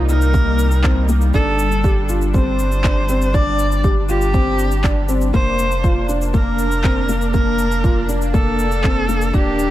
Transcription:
0.00 1.31 C2 medium
0.00 1.30 C3 medium
0.00 5.30 G3 medium
0.00 1.30 A#3 medium
0.00 1.30 D#4 medium
0.09 0.25 D#4 medium
0.09 1.05 A#4 loud
0.09 shaker medium
0.22 shaker soft
0.34 0.65 A#3 medium
0.34 kick loud
0.34 shaker soft
0.59 shaker medium
0.71 shaker soft
0.84 1.00 C4 medium
0.84 kick loud
0.84 clap medium
0.84 shaker soft
1.09 1.25 A#3 medium
1.09 shaker medium
1.21 shaker soft
1.34 5.31 G1 medium
1.34 9.71 D4 medium
1.34 1.66 D4 medium
1.34 2.05 A4 loud
1.34 kick loud
1.34 shaker soft
1.59 shaker medium
1.72 shaker soft
1.84 2.00 G4 medium
1.84 kick loud
1.84 shaker soft
2.09 2.25 F4 medium
2.09 shaker medium
2.21 shaker soft
2.34 2.66 C4 medium
2.34 3.36 C5 loud
2.34 kick loud
2.34 shaker soft
2.59 shaker medium
2.72 shaker soft
2.84 3.00 D4 medium
2.84 kick loud
2.84 clap medium
2.84 shaker soft
3.09 3.25 C4 medium
3.09 shaker medium
3.22 shaker soft
3.34 3.65 D4 loud
3.34 3.84 D5 loud
3.34 kick loud
3.34 shaker soft
3.59 shaker medium
3.72 shaker soft
3.84 4.00 G4 medium
3.84 kick loud
3.84 shaker soft
4.09 4.25 F4 medium
4.09 5.05 G4 loud
4.09 shaker medium
4.21 shaker soft
4.34 4.65 C4 medium
4.34 kick loud
4.34 shaker soft
4.59 shaker medium
4.71 shaker soft
4.84 5.00 D4 medium
4.84 kick loud
4.84 clap medium
4.84 shaker soft
5.09 5.24 C4 medium
5.09 shaker medium
5.21 shaker soft
5.34 9.31 F1 medium
5.34 5.65 A#3 loud
5.34 9.71 A#3 medium
5.34 6.05 C5 loud
5.34 kick medium
5.34 shaker soft
5.59 shaker medium
5.71 shaker soft
5.84 6.00 F4 medium
5.84 kick loud
5.84 shaker soft
6.09 6.25 D4 medium
6.09 shaker medium
6.21 shaker soft
6.34 6.65 A#3 medium
6.34 7.30 A#4 loud
6.34 kick loud
6.34 shaker soft
6.59 shaker medium
6.71 shaker soft
6.84 7.00 C4 medium
6.84 kick loud
6.84 clap medium
6.84 shaker soft
7.09 7.25 A#3 medium
7.09 shaker medium
7.21 shaker soft
7.34 7.65 A#3 medium
7.34 8.05 A#4 loud
7.34 kick medium
7.34 shaker soft
7.59 shaker medium
7.71 shaker soft
7.84 8.00 F4 medium
7.84 kick loud
7.84 shaker soft
8.09 8.25 D4 medium
8.09 shaker medium
8.22 shaker soft
8.34 8.65 A#3 medium
8.34 9.35 A4 loud
8.34 kick loud
8.34 shaker soft
8.59 shaker medium
8.72 shaker soft
8.83 8.99 C4 medium
8.83 kick loud
8.83 clap medium
8.83 shaker soft
9.08 9.24 A#3 medium
9.08 shaker medium
9.21 shaker soft
9.33 9.71 D#1 medium
9.33 9.71 D#3 medium
9.33 9.65 D4 loud
9.33 9.71 G4 medium
9.33 9.71 G4 loud
9.33 kick medium
9.33 shaker soft
9.59 shaker medium

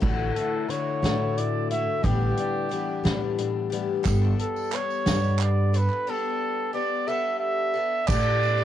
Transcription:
0.00 0.29 A1 medium
0.00 0.69 A2 medium
0.00 0.70 A2 medium
0.00 0.68 D3 medium
0.00 0.69 D3 medium
0.00 0.68 E3 medium
0.00 0.69 A3 medium
0.00 0.70 E4 medium
0.00 0.70 F#4 medium
0.00 kick medium
0.00 crash medium
0.04 1.04 A3 medium
0.36 1.37 E4 soft
0.36 0.71 A4 medium
0.36 closed hi-hat medium
0.69 2.71 D3 medium
0.69 1.03 E3 soft
0.69 1.03 A3 medium
0.69 1.02 E4 medium
0.69 1.01 F#4 medium
0.69 1.39 C#5 medium
0.69 closed hi-hat medium
1.02 1.83 A2 medium
1.02 1.71 A2 soft
1.02 1.71 D3 soft
1.02 1.71 E3 medium
1.02 1.71 A3 medium
1.02 1.70 A3 medium
1.02 1.70 E4 medium
1.02 1.69 F#4 medium
1.02 snare medium
1.02 closed hi-hat medium
1.37 2.00 A2 soft
1.37 2.01 E4 soft
1.37 1.70 D5 medium
1.37 closed hi-hat medium
1.70 2.03 E3 soft
1.70 2.01 A3 soft
1.70 2.04 A3 soft
1.70 2.05 E4 soft
1.70 2.04 F#4 soft
1.70 2.06 E5 medium
1.70 closed hi-hat medium
2.03 2.31 A1 loud
2.03 2.71 A2 medium
2.03 3.37 A2 medium
2.03 2.71 D3 medium
2.03 2.68 E3 medium
2.03 3.04 G3 medium
2.03 2.71 B3 medium
2.03 2.72 D4 medium
2.03 3.38 G4 medium
2.03 2.73 G4 medium
2.03 kick loud
2.03 closed hi-hat medium
2.37 3.38 D4 medium
2.37 closed hi-hat medium
2.69 3.04 E3 medium
2.69 4.02 E3 medium
2.69 3.04 B3 medium
2.69 3.03 D4 medium
2.69 closed hi-hat soft
2.73 3.02 G4 medium
3.03 3.85 A2 medium
3.03 3.73 A2 soft
3.03 3.72 D3 medium
3.03 3.72 E3 medium
3.03 3.72 G3 medium
3.03 3.72 B3 medium
3.03 3.72 D4 medium
3.03 3.70 G4 medium
3.03 snare medium
3.03 closed hi-hat medium
3.38 4.05 A2 medium
3.38 4.02 D4 soft
3.38 closed hi-hat medium
3.70 4.03 E3 soft
3.70 6.08 G3 medium
3.70 4.03 B3 medium
3.70 4.04 D4 soft
3.70 4.05 G4 medium
3.70 closed hi-hat medium
4.03 4.32 G1 loud
4.03 4.71 G3 medium
4.03 4.71 B3 medium
4.03 4.73 D4 medium
4.03 4.74 A4 medium
4.03 kick medium
4.03 clap medium
4.03 closed hi-hat medium
4.03 tambourine loud
4.23 clap soft
4.39 4.76 A4 medium
4.39 closed hi-hat medium
4.56 tambourine medium
4.71 5.06 G3 medium
4.71 5.06 B3 medium
4.71 5.06 D4 medium
4.71 5.05 A4 medium
4.71 5.41 C#5 medium
4.71 clap medium
4.71 closed hi-hat medium
4.90 tambourine soft
5.06 5.86 G2 medium
5.06 5.76 G3 medium
5.06 5.74 B3 medium
5.06 5.74 D4 medium
5.06 5.73 A4 medium
5.06 snare loud
5.06 clap soft
5.06 closed hi-hat medium
5.06 tambourine medium
5.24 tambourine soft
5.39 5.78 D5 medium
5.39 clap medium
5.39 closed hi-hat medium
5.73 6.06 B3 soft
5.73 6.07 D4 soft
5.73 6.07 A4 soft
5.73 6.11 B4 medium
5.73 closed hi-hat medium
5.73 tambourine soft
5.90 clap soft
6.07 6.72 G3 medium
6.07 6.73 B3 medium
6.07 6.74 D4 medium
6.07 6.75 A4 medium
6.07 6.73 A4 medium
6.73 7.07 G3 medium
6.73 7.08 B3 medium
6.73 7.07 D4 medium
6.73 7.07 A4 medium
6.73 7.09 D5 medium
7.07 7.76 G3 medium
7.07 7.76 B3 medium
7.07 7.74 D4 medium
7.07 7.73 A4 medium
7.07 7.39 E5 loud
7.40 8.08 E5 loud
7.74 8.08 B3 soft
7.74 8.08 D4 medium
7.74 8.08 A4 medium
8.07 8.41 A2 medium
8.07 8.64 A2 medium
8.07 8.41 D3 medium
8.07 8.42 E3 medium
8.07 8.42 A3 medium
8.07 8.64 A3 medium
8.07 8.42 D4 medium
8.07 8.64 D4 medium
8.07 8.40 G4 medium
8.07 8.64 G4 medium
8.07 8.64 D5 loud
8.07 kick medium
8.07 clap medium
8.07 crash loud
8.07 tambourine medium
8.42 8.64 E3 soft
8.42 8.64 A3 soft
8.42 8.64 D4 soft
8.42 8.64 G4 soft
8.42 ride medium
8.42 tambourine soft
8.59 clap soft

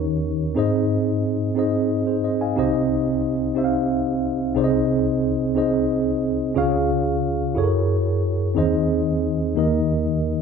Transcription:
0.00 0.52 D#2 medium
0.00 0.52 D#3 medium
0.00 0.28 C#4 medium
0.00 0.29 D#4 medium
0.00 0.32 G4 medium
0.00 0.30 A#4 medium
0.00 0.30 C#5 medium
0.55 2.53 G#2 medium
0.55 1.29 C4 medium
0.55 1.29 D#4 medium
0.55 1.30 G#4 medium
0.55 1.30 C5 medium
0.55 1.31 D#5 medium
1.55 2.29 C4 medium
1.55 2.29 D#4 medium
1.55 1.90 G#4 medium
1.55 1.90 C5 medium
1.55 1.91 D#5 medium
2.07 2.23 G#4 soft
2.07 2.22 C5 soft
2.24 2.40 C5 soft
2.24 2.39 D#5 medium
2.41 2.72 F5 soft
2.41 2.72 G#5 medium
2.56 4.53 C2 medium
2.56 4.53 C3 medium
2.56 3.29 C4 medium
2.56 3.30 D#4 medium
2.56 3.30 G4 medium
2.56 3.31 C5 medium
2.56 3.31 D#5 medium
3.55 4.29 C4 medium
3.55 4.29 D#4 medium
3.55 4.30 G4 medium
3.55 4.30 C5 medium
3.55 3.64 E5 medium
3.64 4.34 F5 medium
4.54 6.53 C2 medium
4.54 6.53 C3 medium
4.54 5.29 C4 medium
4.54 5.29 D#4 medium
4.54 5.30 G#4 medium
4.54 5.30 C5 medium
4.54 4.64 D5 medium
4.64 5.34 D#5 medium
5.55 6.29 C4 medium
5.55 6.29 D#4 medium
5.55 6.30 G#4 medium
5.55 6.30 C5 medium
5.55 6.31 D#5 medium
6.54 7.52 C#2 medium
6.54 7.53 C#3 medium
6.54 7.29 C#4 medium
6.54 7.29 F4 medium
6.54 7.30 G#4 medium
6.54 7.30 C#5 medium
6.54 7.31 F5 loud
7.55 8.53 F#2 medium
7.55 8.29 E4 medium
7.55 8.30 F#4 medium
7.55 8.30 G#4 medium
7.55 7.64 A4 medium
7.55 8.31 C#5 medium
7.64 8.34 A#4 medium
8.55 9.53 D#2 medium
8.55 9.53 D#3 medium
8.55 9.29 C4 medium
8.55 9.30 D#4 medium
8.55 9.30 G#4 medium
8.55 9.31 C5 medium
8.55 9.31 D#5 medium
9.55 10.42 D#2 medium
9.55 10.42 D#3 medium
9.55 10.30 A#3 medium
9.55 10.30 D#4 medium
9.55 10.31 G4 medium
9.55 10.31 A#4 medium
9.55 10.31 D#5 medium

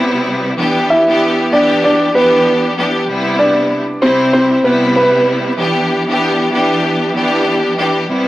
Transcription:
0.00 0.51 C3 loud
0.00 0.52 G3 medium
0.00 0.52 B3 medium
0.00 0.53 E4 loud
0.56 1.03 E3 loud
0.56 1.03 B3 medium
0.56 1.04 D4 medium
0.56 1.04 G4 loud
0.90 1.49 E4 medium
0.90 1.49 E5 medium
1.07 1.48 E3 loud
1.07 1.49 B3 medium
1.07 1.49 D4 medium
1.07 1.49 G4 loud
1.51 2.10 E3 loud
1.51 2.10 B3 medium
1.51 2.11 D4 medium
1.51 1.81 D4 medium
1.51 2.11 G4 loud
1.51 1.81 D5 medium
1.84 2.12 D4 medium
1.84 2.12 D5 medium
2.13 2.73 E3 loud
2.13 2.73 B3 loud
2.13 2.62 B3 medium
2.13 2.73 D4 loud
2.13 2.74 G4 loud
2.13 2.62 B4 medium
2.77 3.06 E3 medium
2.77 3.07 B3 medium
2.77 3.07 D4 medium
2.77 3.07 G4 loud
3.07 3.82 C3 loud
3.07 3.82 G3 medium
3.07 3.82 B3 medium
3.07 3.83 E4 loud
3.39 3.98 D4 medium
3.39 3.98 D5 medium
4.01 4.60 C3 loud
4.01 4.61 G3 medium
4.01 4.61 C4 medium
4.01 4.31 C4 medium
4.01 4.61 E4 loud
4.01 4.30 C5 medium
4.33 4.62 C4 medium
4.33 4.61 C5 medium
4.63 5.52 C3 loud
4.63 5.52 G3 medium
4.63 5.52 B3 medium
4.63 4.93 B3 medium
4.63 5.53 E4 loud
4.63 4.93 B4 medium
4.96 5.25 B3 medium
4.96 5.24 B4 medium
5.57 6.03 E3 loud
5.57 6.03 B3 medium
5.57 6.04 D4 medium
5.57 6.04 G4 loud
6.07 6.48 E3 loud
6.07 6.49 B3 loud
6.07 6.49 D4 medium
6.07 6.50 G4 loud
6.51 7.10 E3 loud
6.51 7.11 B3 medium
6.51 7.11 D4 medium
6.51 7.11 G4 loud
7.14 7.73 E3 loud
7.14 7.73 B3 medium
7.14 7.73 D4 loud
7.14 7.74 G4 loud
7.77 8.06 E3 medium
7.77 8.07 B3 medium
7.77 8.07 D4 medium
7.77 8.08 G4 loud
8.07 8.28 C3 medium
8.07 8.28 G3 loud
8.07 8.28 B3 medium
8.07 8.28 E4 loud

